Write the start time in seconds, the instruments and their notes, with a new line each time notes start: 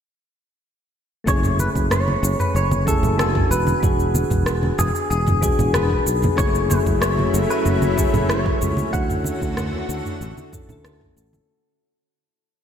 1.24 fretless electric bass F#1, synth keys A3 C#4 E4, kick, cabasa
1.28 synth keys G#4, clean electric guitar C#5
1.43 mid tom, cabasa
1.59 clean electric guitar B4, high conga, cabasa
1.76 fretless electric bass F#1, kick, cabasa
1.91 clean electric guitar C#5, cross-stick, mid tom, cabasa
2.08 high conga
2.23 fretless electric bass F#1, cabasa
2.39 clean electric guitar B4, mid tom, cabasa
2.55 fretless electric bass F#1, clean electric guitar C#5, cabasa
2.71 high conga, cabasa
2.86 synth keys A3 C#4 E4 G#4, clean electric guitar A4, kick, mid tom, cabasa
3.03 fretless electric bass F#1, low conga, cabasa
3.18 synth keys B3 D4 F#4 G#5, clean electric guitar A4, cross-stick, high conga, cabasa
3.35 kick, mid tom
3.51 fretless electric bass E1, clean electric guitar B4, cabasa
3.67 high conga, cabasa
3.80 fretless electric bass E1, synth keys B3 D4 F#4, kick, mid tom, cabasa
3.85 synth keys G#4
4.00 cabasa
4.15 high conga, cabasa
4.30 fretless electric bass E1, kick, mid tom, cabasa
4.46 cross-stick, cabasa
4.63 high conga
4.78 fretless electric bass E1, clean electric guitar G#4, mid tom, cabasa
4.95 cabasa
5.10 fretless electric bass E1, clean electric guitar G#4, cabasa
5.27 mid tom, high conga, cabasa
5.41 synth keys B3 D4 F#4 G#4, kick, cabasa
5.59 fretless electric bass E1, low conga, cabasa
5.73 synth keys B3 D4 F#4 G#4, clean electric guitar B4, cross-stick, mid tom, high conga, cabasa
5.91 kick
6.06 fretless electric bass B1, cabasa
6.22 mid tom, high conga, cabasa
6.36 fretless electric bass F#1, analog synth pad F#3 A3 C#4 E4, synth keys A3 C#4 E4, clean electric guitar C#5, kick, cabasa
6.41 synth keys G#4
6.55 cabasa
6.70 clean electric guitar B4, mid tom, high conga, cabasa
6.86 fretless electric bass F#1, kick, cabasa
7.02 clean electric guitar C#5, cross-stick, cabasa
7.18 mid tom, high conga
7.34 fretless electric bass F#1, cabasa
7.50 clean electric guitar B4, cabasa
7.65 fretless electric bass F#1, mid tom, cabasa
7.82 high conga, cabasa
7.97 synth keys A3 C#4 E4 G#4, kick, cabasa
8.14 fretless electric bass F#1, mid tom, low conga, cabasa
8.29 synth keys A3 C#4 E4 G#4, clean electric guitar C#5, cross-stick, high conga, cabasa
8.46 kick
8.61 fretless electric bass C#2, mid tom, cabasa
8.77 high conga, cabasa
8.91 fretless electric bass D2, analog synth pad D3 A3 F#4, synth keys A3 C#4 E4, clean electric guitar F#5, kick, cabasa
8.96 synth keys F#4
9.10 mid tom, cabasa
9.24 high conga, cabasa
9.42 fretless electric bass D2, kick, cabasa
9.57 cross-stick, mid tom, cabasa
9.73 high conga
9.89 fretless electric bass D2, cabasa
10.05 mid tom, cabasa
10.21 fretless electric bass A1, cabasa
10.38 high conga, cabasa
10.52 synth keys A3 C#4 E4 A4, kick, mid tom, cabasa
10.67 fretless electric bass D2, synth keys A3 C#4 E4, low conga, cabasa
10.72 synth keys A4
10.85 cross-stick, high conga, cabasa
11.01 kick, mid tom
11.17 fretless electric bass A1, cabasa
11.33 high conga, cabasa